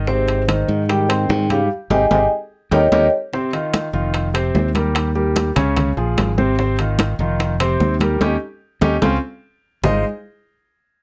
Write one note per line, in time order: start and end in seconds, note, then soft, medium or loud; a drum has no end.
0.00 0.63 G#1 medium
0.07 0.65 G#2 medium
0.07 0.41 C3 medium
0.07 0.41 C4 medium
0.07 0.41 C5 medium
0.07 0.65 C5 medium
0.07 high bongo medium
0.07 high conga soft
0.28 high bongo soft
0.28 high conga soft
0.28 high timbale medium
0.48 0.81 D#3 medium
0.48 0.82 D#4 medium
0.48 0.82 D#5 medium
0.48 high bongo medium
0.48 high conga medium
0.48 high timbale medium
0.68 1.26 G#2 loud
0.68 high bongo soft
0.68 high conga soft
0.89 1.47 D#3 medium
0.89 1.06 G3 medium
0.89 1.06 G4 medium
0.89 1.06 G5 medium
0.89 1.52 G5 loud
0.89 high bongo medium
0.89 high conga soft
0.89 high timbale medium
1.09 1.42 C4 medium
1.09 1.43 C5 medium
1.09 1.43 C6 medium
1.09 high conga soft
1.09 high timbale loud
1.29 1.67 G#2 medium
1.29 high bongo medium
1.29 low bongo medium
1.29 high conga medium
1.29 low timbale medium
1.50 1.60 C#3 medium
1.50 1.67 G3 medium
1.50 1.67 G4 medium
1.50 1.60 F5 medium
1.50 1.67 G5 medium
1.50 high bongo soft
1.50 high conga medium
1.50 high timbale medium
1.90 2.06 G#1 medium
1.90 2.00 C3 medium
1.90 2.04 D#4 loud
1.90 2.04 G4 medium
1.90 2.04 G#4 medium
1.90 2.04 D#5 loud
1.90 2.04 G5 medium
1.90 2.04 G#5 loud
1.90 low bongo loud
1.90 high conga loud
1.90 high timbale loud
2.11 2.26 G#1 loud
2.11 2.21 C3 medium
2.11 2.24 D#4 medium
2.11 2.24 G4 medium
2.11 2.24 G#4 medium
2.11 2.25 D#5 loud
2.11 2.25 G5 loud
2.11 2.24 G#5 medium
2.11 low bongo medium
2.11 high conga loud
2.11 high timbale loud
2.71 2.87 D#2 medium
2.71 2.82 D#3 medium
2.71 2.85 D#4 medium
2.71 2.85 G4 medium
2.71 2.85 A#4 medium
2.71 2.85 C#5 loud
2.71 2.85 D#5 loud
2.71 2.85 G5 loud
2.71 low bongo medium
2.71 high conga medium
2.71 high timbale loud
2.92 3.07 D#2 medium
2.92 3.02 D#3 medium
2.92 3.05 D#4 medium
2.92 3.05 G4 loud
2.92 3.06 A#4 medium
2.92 3.05 C#5 medium
2.92 3.05 D#5 medium
2.92 3.06 G5 medium
2.92 low bongo medium
2.92 high conga loud
2.92 high timbale loud
3.33 3.50 C3 medium
3.33 3.50 C4 medium
3.33 3.50 C5 medium
3.33 high bongo medium
3.33 high conga soft
3.53 3.86 D#3 medium
3.53 3.87 D#4 medium
3.53 3.87 F4 medium
3.53 high bongo soft
3.53 high conga soft
3.53 high timbale medium
3.74 high bongo medium
3.74 high conga loud
3.74 high timbale medium
3.93 4.51 F1 medium
3.93 4.27 D#3 medium
3.93 4.27 D#4 medium
3.93 4.27 F4 medium
3.93 high bongo soft
3.93 high conga soft
4.14 high bongo medium
4.14 high conga soft
4.14 high timbale medium
4.34 4.67 C3 medium
4.34 4.68 C4 medium
4.34 4.68 C5 medium
4.34 high conga soft
4.34 high timbale loud
4.55 5.50 D#2 medium
4.55 high bongo soft
4.55 low bongo medium
4.55 high conga medium
4.55 low timbale medium
4.75 5.08 G3 medium
4.75 5.09 G4 medium
4.75 5.09 A#4 medium
4.75 high bongo soft
4.75 high conga medium
4.75 high timbale medium
4.95 high bongo medium
4.95 high conga soft
4.95 high timbale medium
5.15 5.49 G3 medium
5.15 5.49 G4 medium
5.15 5.49 A#4 medium
5.15 high bongo soft
5.15 high conga soft
5.36 high bongo medium
5.36 high conga loud
5.36 high timbale medium
5.56 5.94 C#2 medium
5.56 5.89 C#3 medium
5.56 5.90 C#4 medium
5.56 5.90 C#5 medium
5.56 high bongo soft
5.56 high conga soft
5.56 low conga medium
5.56 high timbale medium
5.77 high bongo medium
5.77 high conga soft
5.77 low conga medium
5.77 high timbale medium
5.97 6.16 A#1 medium
5.97 6.30 F3 medium
5.97 6.31 F4 medium
5.97 6.31 G#4 medium
5.97 high conga soft
6.17 7.13 G#1 loud
6.17 high bongo soft
6.17 low bongo medium
6.17 high conga medium
6.17 high timbale medium
6.17 low timbale medium
6.38 6.54 C3 medium
6.38 6.55 C4 medium
6.38 6.55 C5 medium
6.38 high bongo soft
6.38 high conga medium
6.58 6.75 C3 medium
6.58 6.76 C4 medium
6.58 6.76 C5 medium
6.58 high bongo medium
6.58 high conga soft
6.79 7.12 D#3 medium
6.79 7.12 D#4 medium
6.79 7.13 F4 medium
6.79 high bongo soft
6.79 high conga soft
6.79 high timbale medium
6.99 high bongo medium
6.99 high conga loud
6.99 high timbale medium
7.19 7.76 F1 medium
7.19 7.53 D#3 medium
7.19 7.53 D#4 medium
7.19 7.53 F4 medium
7.19 high bongo soft
7.19 high conga soft
7.39 high bongo medium
7.39 high conga soft
7.39 high timbale medium
7.60 7.93 C3 medium
7.60 7.93 C4 medium
7.60 7.94 C5 medium
7.60 high conga soft
7.60 high timbale loud
7.80 8.18 D#2 medium
7.80 high bongo soft
7.80 low bongo medium
7.80 high conga medium
8.00 8.18 G3 medium
8.00 8.18 G4 medium
8.00 8.18 A#4 medium
8.00 high bongo soft
8.00 high conga medium
8.00 high timbale medium
8.21 8.36 D#2 loud
8.21 8.34 C#4 medium
8.21 8.34 D#4 medium
8.21 8.34 G4 medium
8.21 low bongo medium
8.21 high conga loud
8.21 high timbale loud
8.81 8.97 D#2 loud
8.81 8.95 C#4 loud
8.81 8.95 D#4 loud
8.81 8.95 G4 medium
8.81 low bongo loud
8.81 high conga loud
8.81 high timbale loud
9.02 9.17 C#2 medium
9.02 9.16 C4 loud
9.02 9.16 C#4 medium
9.02 9.16 F4 loud
9.02 low bongo loud
9.02 high conga loud
9.02 high timbale loud
9.84 10.03 G#1 loud
9.84 10.03 G#3 medium
9.84 10.03 D#4 medium
9.84 10.03 F4 medium
9.84 10.03 G#4 medium
9.84 10.03 C5 medium
9.84 10.03 D#5 loud
9.84 low bongo loud
9.84 low conga loud
9.84 low timbale loud